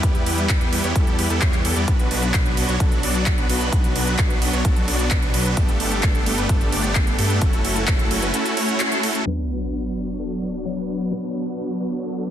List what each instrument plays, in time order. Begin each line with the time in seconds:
0.03 detuned saw bass E2, supersaw synth B3 E4 G4 B4, kick, closed hi-hat
0.15 closed hi-hat
0.26 detuned saw bass E2, supersaw synth G3 B3 E4 G4 B4, open hi-hat, ride
0.38 closed hi-hat
0.49 detuned saw bass E2, kick, clap, closed hi-hat
0.61 closed hi-hat
0.72 detuned saw bass E2, supersaw synth G3 B3 E4 G4 B4, open hi-hat, ride
0.84 detuned saw bass E2, supersaw synth G3 B3 E4 G4 C#5, closed hi-hat
0.95 detuned saw bass E2, supersaw synth G3 B3 E4 G4 A4, kick, closed hi-hat
1.07 closed hi-hat
1.19 detuned saw bass E2, supersaw synth G3 B3 E4 G4 B4, open hi-hat, ride
1.30 detuned saw bass E2, supersaw synth G3 B3 E4 G4 A4, closed hi-hat
1.42 detuned saw bass E2, supersaw synth G3 B3 E4 G4 C#5, kick, clap, closed hi-hat
1.53 clap, closed hi-hat
1.65 detuned saw bass E2, supersaw synth G3 B3 E4 G4 A4, open hi-hat, ride
1.76 detuned saw bass E2, supersaw synth G3 B3 E4 G4 D5, closed hi-hat
1.88 detuned saw bass B1, supersaw synth F#3 B3 D4 F#4 B4, kick, closed hi-hat
1.99 closed hi-hat
2.11 detuned saw bass B1, supersaw synth F#3 B3 D4 F#4 B4, open hi-hat, ride
2.23 closed hi-hat
2.34 detuned saw bass B1, supersaw synth B3 B4, kick, clap, closed hi-hat
2.46 closed hi-hat
2.57 detuned saw bass B1, supersaw synth F#3 B3 D4 F#4 B4, open hi-hat, ride
2.69 detuned saw bass B1, supersaw synth F#3 B3 D4 F#4 C#5, closed hi-hat
2.80 detuned saw bass B1, supersaw synth F#3 B3 D4 F#4 A4, kick, closed hi-hat
2.92 closed hi-hat
3.03 detuned saw bass B1, supersaw synth F#3 B3 D4 F#4 D5, open hi-hat, ride
3.15 closed hi-hat
3.26 kick, clap, closed hi-hat
3.38 detuned saw bass B1, supersaw synth F#3 B3 D4 F#4 B4, closed hi-hat
3.49 detuned saw bass B1, supersaw synth F#3 B3 D4 F#4 B4, open hi-hat, ride
3.61 closed hi-hat
3.73 detuned saw bass B1, supersaw synth F#3 B3 D4 F#4 B4, kick, closed hi-hat
3.84 closed hi-hat
3.95 detuned saw bass B1, supersaw synth F#3 B3 D4 F#4 B4, open hi-hat, ride
4.07 closed hi-hat
4.19 detuned saw bass B1, kick, clap, closed hi-hat
4.30 closed hi-hat
4.42 detuned saw bass B1, supersaw synth F#3 B3 D4 F#4 B4, open hi-hat, ride
4.53 detuned saw bass B1, supersaw synth F#3 B3 D4 F#4 C#5, closed hi-hat
4.65 detuned saw bass B1, supersaw synth F#3 B3 D4 A4, kick, closed hi-hat
4.76 closed hi-hat
4.88 detuned saw bass B1, supersaw synth F#3 B3 D4 F#4 D5, open hi-hat, ride
4.99 closed hi-hat
5.11 kick, clap, closed hi-hat
5.22 detuned saw bass B1, supersaw synth F#3 B3 D4 F#4 B4, closed hi-hat
5.34 detuned saw bass B1, supersaw synth F#3 B3 D4 F#4 B4, open hi-hat, ride
5.45 closed hi-hat
5.57 detuned saw bass G1, supersaw synth A3 B3 D4 G4 A4, kick, closed hi-hat
5.69 closed hi-hat
5.80 detuned saw bass G1, supersaw synth A3 B3 D4 G4 A4, open hi-hat, ride
5.92 closed hi-hat
6.03 detuned saw bass G1, supersaw synth A3 B3 D4 A4, kick, clap, closed hi-hat
6.15 closed hi-hat
6.26 detuned saw bass G1, supersaw synth A3 B3 D4 G4 A4, open hi-hat, ride
6.38 detuned saw bass G1, supersaw synth A3 B3 D4 G4 B4, closed hi-hat
6.49 detuned saw bass G1, supersaw synth A3 B3 D4 G4 A4, kick, closed hi-hat
6.61 closed hi-hat
6.72 detuned saw bass G1, supersaw synth A3 B3 D4 G4 D5, open hi-hat, ride
6.84 closed hi-hat
6.95 kick, clap, closed hi-hat
7.07 detuned saw bass G1, supersaw synth A3 B3 D4 G4 A4, closed hi-hat
7.18 detuned saw bass G2, supersaw synth A3 B3 D4 G4 A4, open hi-hat, ride
7.30 closed hi-hat
7.42 detuned saw bass F#1, supersaw synth A3 C#4 E4 F#4 A4, kick, closed hi-hat
7.53 closed hi-hat
7.65 detuned saw bass F#1, supersaw synth A3 C#4 E4 F#4 A4, open hi-hat, ride
7.76 closed hi-hat
7.88 detuned saw bass F#1, kick, clap, closed hi-hat
7.99 closed hi-hat
8.11 detuned saw bass F#1, supersaw synth A3 C#4 E4 F#4 A4, open hi-hat, ride
8.22 detuned saw bass F#1, supersaw synth A3 C#4 E4 F#4 B4, closed hi-hat
8.34 supersaw synth A3 C#4 E4 F#4 A4, closed hi-hat
8.46 closed hi-hat
8.57 supersaw synth A3 C#4 E4 F#4 C#5, open hi-hat, ride
8.69 closed hi-hat
8.80 clap, closed hi-hat
8.92 supersaw synth A3 C#4 E4 F#4 A4, closed hi-hat
9.03 supersaw synth A3 C#4 E4 F#4 A4, open hi-hat, ride
9.15 closed hi-hat
9.25 felt piano F#3 B3 D4 B4, supersaw synth F#3 B3 B4, sub drop
9.49 supersaw synth F#3 B3 D4 F#4 B4
9.72 supersaw synth F#3 B3 D4 F#4 B4
9.96 supersaw synth F#3 B3 D4 F#4 B4
10.07 supersaw synth F#3 B3 D4 F#4 C#5
10.19 supersaw synth F#3 B3 D4 F#4 A4
10.42 supersaw synth F#3 B3 D4 F#4 D5
10.64 felt piano F#3 B3 D4 C#5
10.76 supersaw synth F#3 B3 D4 F#4 B4
10.88 supersaw synth F#3 B3 D4 F#4 B4
11.10 felt piano F#3 B3 D4 B4, supersaw synth F#3 B3 D4 F#4 B4
11.34 supersaw synth F#3 B3 D4 F#4 B4
11.57 supersaw synth F#3 B3 D4 F#4 B4
11.80 supersaw synth F#3 B3 D4 F#4 B4
11.92 supersaw synth F#3 B3 D4 F#4 C#5
12.03 supersaw synth F#3 B3 D4 F#4 A4
12.26 supersaw synth F#3 B3 D4 F#4 D5